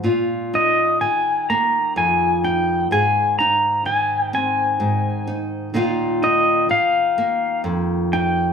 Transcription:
0, 0, Header, 1, 3, 480
1, 0, Start_track
1, 0, Tempo, 950872
1, 18, Time_signature, 6, 3, 24, 8
1, 4305, End_track
2, 0, Start_track
2, 0, Title_t, "Pedal steel guitar"
2, 0, Program_c, 0, 26
2, 278, Note_on_c, 0, 75, 70
2, 495, Note_off_c, 0, 75, 0
2, 510, Note_on_c, 0, 80, 68
2, 731, Note_off_c, 0, 80, 0
2, 756, Note_on_c, 0, 82, 74
2, 975, Note_off_c, 0, 82, 0
2, 997, Note_on_c, 0, 80, 72
2, 1215, Note_off_c, 0, 80, 0
2, 1234, Note_on_c, 0, 79, 71
2, 1453, Note_off_c, 0, 79, 0
2, 1476, Note_on_c, 0, 80, 82
2, 1708, Note_off_c, 0, 80, 0
2, 1710, Note_on_c, 0, 82, 81
2, 1947, Note_off_c, 0, 82, 0
2, 1949, Note_on_c, 0, 80, 76
2, 2131, Note_off_c, 0, 80, 0
2, 2131, Note_on_c, 0, 79, 76
2, 2188, Note_off_c, 0, 79, 0
2, 2194, Note_on_c, 0, 80, 68
2, 2707, Note_off_c, 0, 80, 0
2, 3149, Note_on_c, 0, 75, 74
2, 3385, Note_off_c, 0, 75, 0
2, 3387, Note_on_c, 0, 77, 87
2, 3842, Note_off_c, 0, 77, 0
2, 4105, Note_on_c, 0, 79, 73
2, 4305, Note_off_c, 0, 79, 0
2, 4305, End_track
3, 0, Start_track
3, 0, Title_t, "Nylon-string guitar"
3, 0, Program_c, 1, 24
3, 18, Note_on_c, 1, 46, 54
3, 22, Note_on_c, 1, 65, 48
3, 270, Note_on_c, 1, 63, 45
3, 503, Note_off_c, 1, 46, 0
3, 510, Note_on_c, 1, 51, 47
3, 756, Note_on_c, 1, 58, 49
3, 990, Note_on_c, 1, 41, 57
3, 1231, Note_off_c, 1, 63, 0
3, 1233, Note_on_c, 1, 63, 45
3, 1443, Note_off_c, 1, 58, 0
3, 1466, Note_off_c, 1, 41, 0
3, 1468, Note_off_c, 1, 65, 0
3, 1468, Note_on_c, 1, 44, 53
3, 1475, Note_on_c, 1, 68, 53
3, 1715, Note_off_c, 1, 63, 0
3, 1717, Note_on_c, 1, 63, 48
3, 1940, Note_off_c, 1, 51, 0
3, 1946, Note_on_c, 1, 51, 51
3, 2187, Note_on_c, 1, 60, 53
3, 2416, Note_off_c, 1, 44, 0
3, 2422, Note_on_c, 1, 44, 52
3, 2660, Note_off_c, 1, 63, 0
3, 2662, Note_on_c, 1, 63, 44
3, 2872, Note_off_c, 1, 44, 0
3, 2874, Note_off_c, 1, 60, 0
3, 2877, Note_off_c, 1, 68, 0
3, 2892, Note_off_c, 1, 51, 0
3, 2896, Note_on_c, 1, 46, 56
3, 2899, Note_on_c, 1, 51, 45
3, 2902, Note_on_c, 1, 58, 48
3, 2905, Note_off_c, 1, 63, 0
3, 2907, Note_on_c, 1, 63, 51
3, 2909, Note_on_c, 1, 65, 55
3, 3142, Note_off_c, 1, 63, 0
3, 3144, Note_on_c, 1, 63, 48
3, 3372, Note_off_c, 1, 51, 0
3, 3377, Note_off_c, 1, 46, 0
3, 3378, Note_on_c, 1, 51, 54
3, 3621, Note_off_c, 1, 58, 0
3, 3623, Note_on_c, 1, 58, 53
3, 3856, Note_on_c, 1, 41, 57
3, 4101, Note_off_c, 1, 63, 0
3, 4103, Note_on_c, 1, 63, 47
3, 4305, Note_off_c, 1, 41, 0
3, 4305, Note_off_c, 1, 51, 0
3, 4305, Note_off_c, 1, 58, 0
3, 4305, Note_off_c, 1, 63, 0
3, 4305, Note_off_c, 1, 65, 0
3, 4305, End_track
0, 0, End_of_file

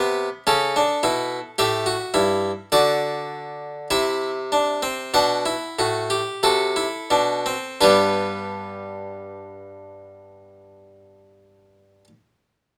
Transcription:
0, 0, Header, 1, 2, 480
1, 0, Start_track
1, 0, Key_signature, 1, "major"
1, 0, Tempo, 1117318
1, 1171, Time_signature, 4, 2, 24, 8
1, 1171, Tempo, 1209677
1, 2131, Tempo, 1295896
1, 2611, Tempo, 1369863
1, 3091, Tempo, 1408451
1, 4784, End_track
2, 0, Start_track
2, 0, Title_t, "Harpsichord"
2, 0, Program_c, 0, 6
2, 0, Note_on_c, 0, 48, 86
2, 0, Note_on_c, 0, 59, 95
2, 0, Note_on_c, 0, 72, 88
2, 116, Note_off_c, 0, 48, 0
2, 116, Note_off_c, 0, 59, 0
2, 186, Note_off_c, 0, 72, 0
2, 202, Note_on_c, 0, 49, 84
2, 202, Note_on_c, 0, 61, 91
2, 203, Note_on_c, 0, 69, 78
2, 317, Note_off_c, 0, 61, 0
2, 327, Note_on_c, 0, 62, 93
2, 349, Note_off_c, 0, 49, 0
2, 440, Note_off_c, 0, 62, 0
2, 443, Note_on_c, 0, 64, 103
2, 445, Note_on_c, 0, 47, 90
2, 591, Note_off_c, 0, 64, 0
2, 592, Note_off_c, 0, 47, 0
2, 666, Note_off_c, 0, 69, 0
2, 681, Note_on_c, 0, 67, 107
2, 683, Note_on_c, 0, 76, 86
2, 684, Note_on_c, 0, 45, 95
2, 798, Note_off_c, 0, 67, 0
2, 800, Note_on_c, 0, 66, 102
2, 834, Note_off_c, 0, 45, 0
2, 919, Note_off_c, 0, 66, 0
2, 919, Note_on_c, 0, 64, 106
2, 920, Note_on_c, 0, 43, 92
2, 1073, Note_off_c, 0, 64, 0
2, 1074, Note_off_c, 0, 43, 0
2, 1157, Note_off_c, 0, 76, 0
2, 1169, Note_on_c, 0, 50, 93
2, 1170, Note_on_c, 0, 74, 97
2, 1171, Note_on_c, 0, 66, 99
2, 1626, Note_off_c, 0, 50, 0
2, 1626, Note_off_c, 0, 74, 0
2, 1627, Note_off_c, 0, 66, 0
2, 1639, Note_on_c, 0, 64, 91
2, 1640, Note_on_c, 0, 48, 90
2, 1640, Note_on_c, 0, 76, 89
2, 1790, Note_off_c, 0, 64, 0
2, 1884, Note_on_c, 0, 62, 83
2, 2003, Note_off_c, 0, 62, 0
2, 2004, Note_on_c, 0, 60, 89
2, 2115, Note_off_c, 0, 76, 0
2, 2116, Note_off_c, 0, 48, 0
2, 2126, Note_off_c, 0, 60, 0
2, 2128, Note_on_c, 0, 47, 83
2, 2129, Note_on_c, 0, 62, 82
2, 2129, Note_on_c, 0, 78, 84
2, 2244, Note_off_c, 0, 62, 0
2, 2246, Note_on_c, 0, 64, 82
2, 2276, Note_off_c, 0, 47, 0
2, 2363, Note_off_c, 0, 64, 0
2, 2369, Note_on_c, 0, 45, 85
2, 2370, Note_on_c, 0, 66, 95
2, 2485, Note_on_c, 0, 67, 83
2, 2486, Note_off_c, 0, 66, 0
2, 2519, Note_off_c, 0, 45, 0
2, 2595, Note_off_c, 0, 78, 0
2, 2605, Note_off_c, 0, 67, 0
2, 2607, Note_on_c, 0, 48, 85
2, 2609, Note_on_c, 0, 66, 89
2, 2609, Note_on_c, 0, 69, 79
2, 2724, Note_off_c, 0, 66, 0
2, 2724, Note_on_c, 0, 64, 82
2, 2755, Note_off_c, 0, 48, 0
2, 2841, Note_off_c, 0, 64, 0
2, 2844, Note_on_c, 0, 47, 85
2, 2844, Note_on_c, 0, 62, 82
2, 2962, Note_off_c, 0, 62, 0
2, 2968, Note_on_c, 0, 60, 73
2, 2996, Note_off_c, 0, 47, 0
2, 3075, Note_off_c, 0, 69, 0
2, 3087, Note_off_c, 0, 60, 0
2, 3090, Note_on_c, 0, 43, 72
2, 3090, Note_on_c, 0, 62, 75
2, 3091, Note_on_c, 0, 71, 77
2, 3100, Note_on_c, 0, 55, 67
2, 3100, Note_on_c, 0, 59, 65
2, 4533, Note_off_c, 0, 43, 0
2, 4533, Note_off_c, 0, 62, 0
2, 4534, Note_off_c, 0, 71, 0
2, 4543, Note_off_c, 0, 59, 0
2, 4544, Note_off_c, 0, 55, 0
2, 4784, End_track
0, 0, End_of_file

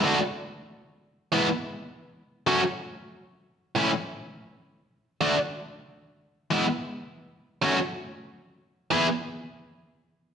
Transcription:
0, 0, Header, 1, 2, 480
1, 0, Start_track
1, 0, Tempo, 500000
1, 9931, End_track
2, 0, Start_track
2, 0, Title_t, "Distorted electric guitar"
2, 0, Program_c, 0, 30
2, 31, Note_on_c, 0, 50, 98
2, 42, Note_on_c, 0, 57, 98
2, 46, Note_on_c, 0, 62, 90
2, 51, Note_on_c, 0, 66, 106
2, 165, Note_off_c, 0, 50, 0
2, 170, Note_off_c, 0, 57, 0
2, 172, Note_off_c, 0, 62, 0
2, 175, Note_off_c, 0, 66, 0
2, 1274, Note_on_c, 0, 52, 84
2, 1280, Note_on_c, 0, 56, 95
2, 1284, Note_on_c, 0, 59, 103
2, 1289, Note_on_c, 0, 64, 104
2, 1406, Note_off_c, 0, 52, 0
2, 1409, Note_off_c, 0, 56, 0
2, 1411, Note_off_c, 0, 59, 0
2, 1414, Note_off_c, 0, 64, 0
2, 2368, Note_on_c, 0, 57, 89
2, 2370, Note_on_c, 0, 54, 103
2, 2376, Note_on_c, 0, 61, 112
2, 2378, Note_on_c, 0, 66, 103
2, 2496, Note_off_c, 0, 57, 0
2, 2497, Note_off_c, 0, 54, 0
2, 2500, Note_off_c, 0, 61, 0
2, 2501, Note_off_c, 0, 66, 0
2, 3613, Note_on_c, 0, 45, 89
2, 3615, Note_on_c, 0, 52, 97
2, 3623, Note_on_c, 0, 57, 96
2, 3626, Note_on_c, 0, 61, 106
2, 3626, Note_on_c, 0, 64, 94
2, 3739, Note_off_c, 0, 45, 0
2, 3740, Note_off_c, 0, 52, 0
2, 3744, Note_off_c, 0, 57, 0
2, 3745, Note_off_c, 0, 61, 0
2, 3745, Note_off_c, 0, 64, 0
2, 5003, Note_on_c, 0, 50, 104
2, 5010, Note_on_c, 0, 57, 104
2, 5016, Note_on_c, 0, 62, 114
2, 5016, Note_on_c, 0, 66, 104
2, 5132, Note_off_c, 0, 50, 0
2, 5135, Note_off_c, 0, 57, 0
2, 5138, Note_off_c, 0, 62, 0
2, 5138, Note_off_c, 0, 66, 0
2, 6248, Note_on_c, 0, 52, 94
2, 6248, Note_on_c, 0, 56, 94
2, 6257, Note_on_c, 0, 59, 100
2, 6263, Note_on_c, 0, 64, 112
2, 6374, Note_off_c, 0, 52, 0
2, 6374, Note_off_c, 0, 56, 0
2, 6379, Note_off_c, 0, 59, 0
2, 6382, Note_off_c, 0, 64, 0
2, 7321, Note_on_c, 0, 54, 87
2, 7325, Note_on_c, 0, 57, 102
2, 7335, Note_on_c, 0, 61, 109
2, 7342, Note_on_c, 0, 66, 104
2, 7453, Note_off_c, 0, 54, 0
2, 7455, Note_off_c, 0, 57, 0
2, 7460, Note_off_c, 0, 61, 0
2, 7464, Note_off_c, 0, 66, 0
2, 8554, Note_on_c, 0, 52, 86
2, 8562, Note_on_c, 0, 59, 97
2, 8570, Note_on_c, 0, 64, 114
2, 8571, Note_on_c, 0, 68, 104
2, 8690, Note_off_c, 0, 52, 0
2, 8694, Note_off_c, 0, 59, 0
2, 8698, Note_off_c, 0, 64, 0
2, 8698, Note_off_c, 0, 68, 0
2, 9931, End_track
0, 0, End_of_file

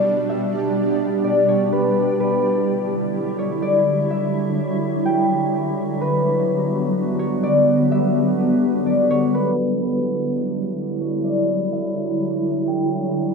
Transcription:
0, 0, Header, 1, 3, 480
1, 0, Start_track
1, 0, Tempo, 476190
1, 54, Time_signature, 4, 2, 24, 8
1, 13452, End_track
2, 0, Start_track
2, 0, Title_t, "Harp"
2, 0, Program_c, 0, 46
2, 0, Note_on_c, 0, 71, 83
2, 0, Note_on_c, 0, 74, 82
2, 297, Note_on_c, 0, 76, 88
2, 444, Note_off_c, 0, 71, 0
2, 1249, Note_off_c, 0, 74, 0
2, 1253, Note_on_c, 0, 74, 81
2, 1498, Note_on_c, 0, 73, 82
2, 1558, Note_off_c, 0, 74, 0
2, 1737, Note_on_c, 0, 71, 77
2, 2034, Note_off_c, 0, 76, 0
2, 2213, Note_off_c, 0, 71, 0
2, 2217, Note_on_c, 0, 71, 74
2, 3409, Note_off_c, 0, 73, 0
2, 3413, Note_on_c, 0, 73, 79
2, 3652, Note_on_c, 0, 74, 86
2, 3713, Note_off_c, 0, 73, 0
2, 4139, Note_on_c, 0, 76, 77
2, 4282, Note_off_c, 0, 71, 0
2, 5096, Note_on_c, 0, 79, 82
2, 5514, Note_off_c, 0, 74, 0
2, 5876, Note_off_c, 0, 76, 0
2, 6059, Note_on_c, 0, 71, 81
2, 6661, Note_off_c, 0, 79, 0
2, 7250, Note_on_c, 0, 73, 85
2, 7493, Note_on_c, 0, 74, 90
2, 7554, Note_off_c, 0, 73, 0
2, 7979, Note_on_c, 0, 76, 86
2, 8125, Note_off_c, 0, 71, 0
2, 8929, Note_off_c, 0, 74, 0
2, 8933, Note_on_c, 0, 74, 77
2, 9178, Note_on_c, 0, 73, 87
2, 9238, Note_off_c, 0, 74, 0
2, 9416, Note_on_c, 0, 71, 77
2, 9716, Note_off_c, 0, 76, 0
2, 9894, Note_off_c, 0, 71, 0
2, 9898, Note_on_c, 0, 71, 72
2, 11092, Note_off_c, 0, 73, 0
2, 11096, Note_on_c, 0, 73, 71
2, 11335, Note_on_c, 0, 74, 82
2, 11395, Note_off_c, 0, 73, 0
2, 11820, Note_on_c, 0, 76, 72
2, 11964, Note_off_c, 0, 71, 0
2, 12778, Note_on_c, 0, 79, 76
2, 13196, Note_off_c, 0, 74, 0
2, 13452, Note_off_c, 0, 76, 0
2, 13452, Note_off_c, 0, 79, 0
2, 13452, End_track
3, 0, Start_track
3, 0, Title_t, "Ambient pad"
3, 0, Program_c, 1, 92
3, 0, Note_on_c, 1, 47, 83
3, 0, Note_on_c, 1, 55, 79
3, 0, Note_on_c, 1, 62, 81
3, 54, Note_on_c, 1, 67, 92
3, 1936, Note_off_c, 1, 47, 0
3, 1936, Note_off_c, 1, 62, 0
3, 1955, Note_off_c, 1, 67, 0
3, 1973, Note_on_c, 1, 54, 93
3, 1974, Note_on_c, 1, 50, 84
3, 1975, Note_on_c, 1, 64, 75
3, 5774, Note_off_c, 1, 55, 0
3, 5776, Note_off_c, 1, 64, 0
3, 5813, Note_on_c, 1, 55, 78
3, 5813, Note_on_c, 1, 59, 79
3, 9613, Note_off_c, 1, 54, 0
3, 9614, Note_off_c, 1, 50, 0
3, 9615, Note_off_c, 1, 55, 0
3, 9615, Note_off_c, 1, 59, 0
3, 9654, Note_on_c, 1, 50, 81
3, 9654, Note_on_c, 1, 55, 75
3, 9654, Note_on_c, 1, 64, 76
3, 9655, Note_on_c, 1, 54, 92
3, 13452, Note_off_c, 1, 50, 0
3, 13452, Note_off_c, 1, 54, 0
3, 13452, Note_off_c, 1, 55, 0
3, 13452, Note_off_c, 1, 64, 0
3, 13452, End_track
0, 0, End_of_file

